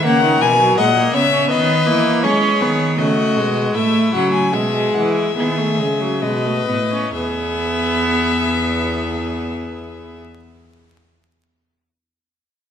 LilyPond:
<<
  \new Staff \with { instrumentName = "Violin" } { \time 3/4 \key e \major \tempo 4 = 70 fis''8 gis''8 fis''8 e''8 dis''4 | cis''4 dis''4 e''8 fis''16 gis''16 | e''8 fis''16 e''4~ e''16 dis''4 | e''2.~ |
e''2. | }
  \new Staff \with { instrumentName = "Violin" } { \time 3/4 \key e \major ais'4 dis''8 cis''8 b'4 | gis'4 fis'4 e'4 | gis'4 gis'4 b'4 | gis'2.~ |
gis'2. | }
  \new Staff \with { instrumentName = "Viola" } { \time 3/4 \key e \major ais16 dis16 e16 fis16 gis16 ais16 b16 cis'16 b8 ais8 | cis'8 b8 a8 gis8 a8 fis8 | gis4 b16 a16 gis16 fis16 gis16 a16 b16 cis'16 | b2.~ |
b2. | }
  \new Staff \with { instrumentName = "Cello" } { \clef bass \time 3/4 \key e \major cis8 b,8 ais,8 cis8 dis8 e8 | gis8 dis8 cis8 b,8 a,8 cis8 | b,8 e8 dis8 cis8 b,8 a,8 | e,2.~ |
e,2. | }
>>